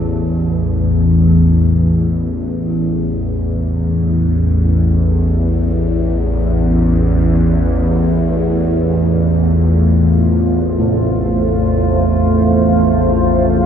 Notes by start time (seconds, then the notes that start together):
Already playing: A1 E2 A2 A4
6.28 A3
7.30 F4
9.05 C5
10.43 F5
10.79 A2